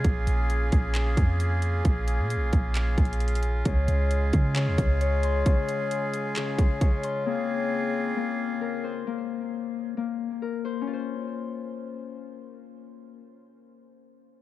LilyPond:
<<
  \new Staff \with { instrumentName = "Harp" } { \time 4/4 \key des \major \tempo 4 = 133 r1 | r1 | des2 des4 des''8 c'''8 | des2 des4 des''8 c'''8 |
bes2 bes4 bes'8 c''8 | bes2 bes4 bes'8 c''8 | <des' f' c''>1~ | <des' f' c''>1 | }
  \new Staff \with { instrumentName = "Woodwind section" } { \time 4/4 \key des \major << { <bes aes'>1~ | <bes aes'>1 | <aes aes'>1~ | <aes aes'>1 |
<bes aes'>1 | r1 | r1 | r1 | } \\ { <des des' f'>1~ | <des des' f'>1~ | <des des' f'>1~ | <des des' f'>1 |
<des c' f'>1 | r1 | r1 | r1 | } >> }
  \new Staff \with { instrumentName = "808-style bass" } { \clef bass \time 4/4 \key des \major bes,,8 bes,,4 bes,,4 f,4. | bes,,8. bes,16. bes,,16. bes,,4 bes,,4. | des,8 des,4 des8. ees,16 des,4. | r1 |
r1 | r1 | r1 | r1 | }
  \new DrumStaff \with { instrumentName = "Drums" } \drummode { \time 4/4 <hh bd>8 hh8 hh8 <hh bd>8 <hc hh>8 <hh bd>8 hh8 hh8 | <hh bd>8 hh8 hh8 <hh bd>8 \tuplet 3/2 { <hc hh>16 r16 r16 <hh bd>16 hh16 hh16 hh16 hh16 hh16 hh16 r16 r16 } | <hh bd>8 hh8 hh8 <hh bd>8 <hc hh>8 <hh bd>8 hh8 hh8 | <hh bd>8 hh8 hh8 hh8 <hc hh>8 <hh bd>8 <hh bd>8 hh8 |
r4 r4 r4 r4 | r4 r4 r4 r4 | r4 r4 r4 r4 | r4 r4 r4 r4 | }
>>